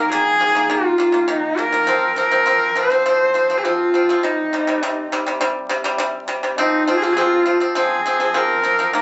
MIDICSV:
0, 0, Header, 1, 3, 480
1, 0, Start_track
1, 0, Key_signature, -4, "minor"
1, 0, Tempo, 588813
1, 1531, Time_signature, 4, 2, 24, 8
1, 7351, End_track
2, 0, Start_track
2, 0, Title_t, "Horsehead fiddle"
2, 0, Program_c, 0, 110
2, 101, Note_on_c, 0, 68, 100
2, 573, Note_on_c, 0, 65, 83
2, 585, Note_off_c, 0, 68, 0
2, 1055, Note_on_c, 0, 63, 82
2, 1067, Note_off_c, 0, 65, 0
2, 1294, Note_on_c, 0, 70, 99
2, 1306, Note_off_c, 0, 63, 0
2, 1769, Note_off_c, 0, 70, 0
2, 1774, Note_on_c, 0, 70, 105
2, 2255, Note_on_c, 0, 72, 107
2, 2267, Note_off_c, 0, 70, 0
2, 2916, Note_on_c, 0, 68, 68
2, 2928, Note_off_c, 0, 72, 0
2, 2971, Note_on_c, 0, 65, 92
2, 2983, Note_off_c, 0, 68, 0
2, 3449, Note_on_c, 0, 63, 75
2, 3461, Note_off_c, 0, 65, 0
2, 4170, Note_off_c, 0, 63, 0
2, 5361, Note_on_c, 0, 63, 80
2, 5619, Note_on_c, 0, 65, 86
2, 5632, Note_off_c, 0, 63, 0
2, 5680, Note_on_c, 0, 68, 89
2, 5692, Note_off_c, 0, 65, 0
2, 5728, Note_on_c, 0, 65, 88
2, 5740, Note_off_c, 0, 68, 0
2, 5813, Note_on_c, 0, 68, 87
2, 5825, Note_off_c, 0, 65, 0
2, 5880, Note_on_c, 0, 65, 104
2, 5893, Note_off_c, 0, 68, 0
2, 6094, Note_off_c, 0, 65, 0
2, 6345, Note_on_c, 0, 68, 83
2, 6826, Note_on_c, 0, 70, 91
2, 6838, Note_off_c, 0, 68, 0
2, 7295, Note_off_c, 0, 70, 0
2, 7304, Note_on_c, 0, 70, 84
2, 7351, Note_off_c, 0, 70, 0
2, 7351, End_track
3, 0, Start_track
3, 0, Title_t, "Pipa"
3, 0, Program_c, 1, 105
3, 94, Note_on_c, 1, 51, 80
3, 101, Note_on_c, 1, 58, 98
3, 284, Note_off_c, 1, 51, 0
3, 287, Note_off_c, 1, 58, 0
3, 331, Note_on_c, 1, 51, 68
3, 340, Note_on_c, 1, 58, 75
3, 426, Note_off_c, 1, 51, 0
3, 431, Note_off_c, 1, 58, 0
3, 449, Note_on_c, 1, 51, 65
3, 460, Note_on_c, 1, 58, 70
3, 545, Note_off_c, 1, 51, 0
3, 551, Note_off_c, 1, 58, 0
3, 567, Note_on_c, 1, 51, 94
3, 576, Note_on_c, 1, 58, 98
3, 761, Note_off_c, 1, 51, 0
3, 765, Note_off_c, 1, 58, 0
3, 801, Note_on_c, 1, 51, 67
3, 813, Note_on_c, 1, 58, 79
3, 901, Note_off_c, 1, 51, 0
3, 907, Note_off_c, 1, 58, 0
3, 916, Note_on_c, 1, 51, 73
3, 928, Note_on_c, 1, 58, 80
3, 1019, Note_off_c, 1, 51, 0
3, 1025, Note_off_c, 1, 58, 0
3, 1041, Note_on_c, 1, 51, 93
3, 1048, Note_on_c, 1, 58, 90
3, 1238, Note_off_c, 1, 51, 0
3, 1241, Note_off_c, 1, 58, 0
3, 1283, Note_on_c, 1, 51, 62
3, 1292, Note_on_c, 1, 58, 74
3, 1383, Note_off_c, 1, 51, 0
3, 1387, Note_off_c, 1, 58, 0
3, 1405, Note_on_c, 1, 51, 68
3, 1416, Note_on_c, 1, 58, 78
3, 1504, Note_off_c, 1, 51, 0
3, 1509, Note_off_c, 1, 58, 0
3, 1523, Note_on_c, 1, 53, 84
3, 1535, Note_on_c, 1, 60, 96
3, 1719, Note_off_c, 1, 53, 0
3, 1725, Note_off_c, 1, 60, 0
3, 1762, Note_on_c, 1, 53, 68
3, 1774, Note_on_c, 1, 60, 83
3, 1863, Note_off_c, 1, 53, 0
3, 1868, Note_off_c, 1, 60, 0
3, 1886, Note_on_c, 1, 53, 71
3, 1893, Note_on_c, 1, 60, 78
3, 1985, Note_off_c, 1, 53, 0
3, 1988, Note_off_c, 1, 60, 0
3, 2004, Note_on_c, 1, 53, 87
3, 2013, Note_on_c, 1, 60, 95
3, 2199, Note_off_c, 1, 53, 0
3, 2204, Note_off_c, 1, 60, 0
3, 2246, Note_on_c, 1, 53, 72
3, 2255, Note_on_c, 1, 60, 82
3, 2345, Note_off_c, 1, 53, 0
3, 2349, Note_off_c, 1, 60, 0
3, 2366, Note_on_c, 1, 53, 70
3, 2377, Note_on_c, 1, 60, 76
3, 2465, Note_off_c, 1, 53, 0
3, 2470, Note_off_c, 1, 60, 0
3, 2492, Note_on_c, 1, 53, 95
3, 2497, Note_on_c, 1, 60, 100
3, 2684, Note_off_c, 1, 53, 0
3, 2686, Note_off_c, 1, 60, 0
3, 2723, Note_on_c, 1, 53, 68
3, 2731, Note_on_c, 1, 60, 81
3, 2823, Note_off_c, 1, 53, 0
3, 2827, Note_off_c, 1, 60, 0
3, 2850, Note_on_c, 1, 53, 73
3, 2860, Note_on_c, 1, 60, 78
3, 2946, Note_off_c, 1, 53, 0
3, 2952, Note_off_c, 1, 60, 0
3, 2972, Note_on_c, 1, 53, 86
3, 2977, Note_on_c, 1, 60, 88
3, 3164, Note_off_c, 1, 53, 0
3, 3166, Note_off_c, 1, 60, 0
3, 3211, Note_on_c, 1, 53, 63
3, 3220, Note_on_c, 1, 60, 71
3, 3307, Note_off_c, 1, 53, 0
3, 3312, Note_off_c, 1, 60, 0
3, 3335, Note_on_c, 1, 53, 68
3, 3344, Note_on_c, 1, 60, 83
3, 3429, Note_off_c, 1, 53, 0
3, 3433, Note_off_c, 1, 60, 0
3, 3450, Note_on_c, 1, 48, 79
3, 3460, Note_on_c, 1, 55, 99
3, 3643, Note_off_c, 1, 48, 0
3, 3647, Note_off_c, 1, 55, 0
3, 3693, Note_on_c, 1, 48, 66
3, 3700, Note_on_c, 1, 55, 75
3, 3788, Note_off_c, 1, 48, 0
3, 3792, Note_off_c, 1, 55, 0
3, 3810, Note_on_c, 1, 48, 74
3, 3820, Note_on_c, 1, 55, 79
3, 3906, Note_off_c, 1, 48, 0
3, 3912, Note_off_c, 1, 55, 0
3, 3935, Note_on_c, 1, 48, 90
3, 3941, Note_on_c, 1, 55, 101
3, 4125, Note_off_c, 1, 48, 0
3, 4128, Note_off_c, 1, 55, 0
3, 4175, Note_on_c, 1, 48, 75
3, 4182, Note_on_c, 1, 55, 97
3, 4269, Note_off_c, 1, 48, 0
3, 4272, Note_off_c, 1, 55, 0
3, 4291, Note_on_c, 1, 48, 75
3, 4302, Note_on_c, 1, 55, 83
3, 4387, Note_off_c, 1, 48, 0
3, 4392, Note_off_c, 1, 55, 0
3, 4407, Note_on_c, 1, 48, 104
3, 4412, Note_on_c, 1, 55, 106
3, 4600, Note_off_c, 1, 48, 0
3, 4603, Note_off_c, 1, 55, 0
3, 4641, Note_on_c, 1, 48, 85
3, 4650, Note_on_c, 1, 55, 88
3, 4742, Note_off_c, 1, 48, 0
3, 4746, Note_off_c, 1, 55, 0
3, 4763, Note_on_c, 1, 48, 84
3, 4771, Note_on_c, 1, 55, 100
3, 4862, Note_off_c, 1, 48, 0
3, 4867, Note_off_c, 1, 55, 0
3, 4878, Note_on_c, 1, 48, 95
3, 4889, Note_on_c, 1, 55, 97
3, 5076, Note_off_c, 1, 48, 0
3, 5081, Note_off_c, 1, 55, 0
3, 5117, Note_on_c, 1, 48, 72
3, 5127, Note_on_c, 1, 55, 80
3, 5219, Note_off_c, 1, 48, 0
3, 5224, Note_off_c, 1, 55, 0
3, 5243, Note_on_c, 1, 48, 60
3, 5251, Note_on_c, 1, 55, 68
3, 5342, Note_off_c, 1, 48, 0
3, 5346, Note_off_c, 1, 55, 0
3, 5364, Note_on_c, 1, 53, 81
3, 5373, Note_on_c, 1, 60, 88
3, 5558, Note_off_c, 1, 53, 0
3, 5563, Note_off_c, 1, 60, 0
3, 5604, Note_on_c, 1, 53, 71
3, 5612, Note_on_c, 1, 60, 83
3, 5702, Note_off_c, 1, 53, 0
3, 5706, Note_off_c, 1, 60, 0
3, 5722, Note_on_c, 1, 53, 67
3, 5734, Note_on_c, 1, 60, 80
3, 5821, Note_off_c, 1, 53, 0
3, 5827, Note_off_c, 1, 60, 0
3, 5842, Note_on_c, 1, 53, 90
3, 5852, Note_on_c, 1, 60, 94
3, 6037, Note_off_c, 1, 53, 0
3, 6042, Note_off_c, 1, 60, 0
3, 6078, Note_on_c, 1, 53, 72
3, 6085, Note_on_c, 1, 60, 69
3, 6179, Note_off_c, 1, 53, 0
3, 6183, Note_off_c, 1, 60, 0
3, 6197, Note_on_c, 1, 53, 62
3, 6206, Note_on_c, 1, 60, 76
3, 6298, Note_off_c, 1, 53, 0
3, 6303, Note_off_c, 1, 60, 0
3, 6320, Note_on_c, 1, 53, 95
3, 6329, Note_on_c, 1, 60, 106
3, 6515, Note_off_c, 1, 53, 0
3, 6520, Note_off_c, 1, 60, 0
3, 6568, Note_on_c, 1, 53, 67
3, 6576, Note_on_c, 1, 60, 85
3, 6663, Note_off_c, 1, 53, 0
3, 6668, Note_off_c, 1, 60, 0
3, 6685, Note_on_c, 1, 53, 74
3, 6694, Note_on_c, 1, 60, 74
3, 6782, Note_off_c, 1, 53, 0
3, 6786, Note_off_c, 1, 60, 0
3, 6801, Note_on_c, 1, 53, 91
3, 6809, Note_on_c, 1, 60, 80
3, 6996, Note_off_c, 1, 53, 0
3, 7000, Note_off_c, 1, 60, 0
3, 7039, Note_on_c, 1, 53, 61
3, 7048, Note_on_c, 1, 60, 76
3, 7138, Note_off_c, 1, 53, 0
3, 7143, Note_off_c, 1, 60, 0
3, 7165, Note_on_c, 1, 53, 70
3, 7173, Note_on_c, 1, 60, 69
3, 7261, Note_off_c, 1, 53, 0
3, 7265, Note_off_c, 1, 60, 0
3, 7282, Note_on_c, 1, 51, 84
3, 7293, Note_on_c, 1, 58, 93
3, 7351, Note_off_c, 1, 51, 0
3, 7351, Note_off_c, 1, 58, 0
3, 7351, End_track
0, 0, End_of_file